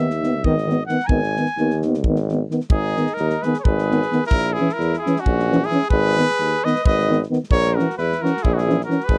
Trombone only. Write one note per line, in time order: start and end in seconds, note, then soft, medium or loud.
0.22 0.31 D#3 medium
0.45 0.55 D#3 medium
0.67 0.75 D#3 medium
0.89 0.97 D#3 medium
1.09 1.20 D#3 medium
1.38 1.46 D#3 medium
1.59 1.69 D#3 medium
1.85 1.93 D#3 medium
2.08 2.17 D#3 medium
2.30 2.38 D#3 medium
2.51 2.59 D#3 medium
2.97 3.05 D#3 medium
3.46 3.54 D#3 soft
3.92 4.00 D#3 medium
4.12 4.20 D#3 medium
4.61 4.68 E3 medium
5.07 5.15 E3 medium
5.51 5.59 E3 medium
5.70 5.78 E3 medium
6.17 6.25 D#3 medium
6.65 6.73 D#3 medium
7.09 7.17 D#3 medium
7.30 7.38 D#3 medium
7.79 7.87 E3 medium
8.23 8.31 E3 medium
8.68 8.76 E3 medium
8.88 8.96 E3 medium